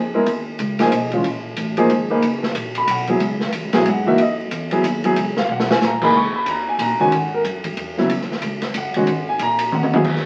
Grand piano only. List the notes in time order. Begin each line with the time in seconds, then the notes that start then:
0.14 G#3 B3 E4 A#4
0.80 F3 A#3 D#4 G#4 G#5
1.13 E3 G#3 C#4 F4
1.78 F3 A#3 D#4 G#4
2.10 A#3 D#4 G#4 B4
2.78 B5
2.91 F#5
3.09 F#3 B3 E4 G#4
3.73 F#3 B3 E4 G#4
3.89 F#5
4.06 E3 A#3 D#4 F#4 E5
4.21 D#5
4.72 F#3 B3 E4 G#4
5.05 F#3 B3 E4 G#4
5.38 F5
5.52 F#5
5.71 G#5
5.85 A#5
6.02 E3 A#3 D#4 G#4 B5
6.17 C#6
6.36 B5
6.49 A#5
6.69 G#5
6.82 A#5
7.00 D#3 G#3 C#4 F#4 G#5
7.15 F#5
7.34 A#4
7.98 C#3 F#3 B3 E4
8.78 F#5
8.96 D#3 G#3 C#4 F#4
9.29 G#5
9.43 A#5
9.75 F#5
9.93 F#3 B3 E4 G#4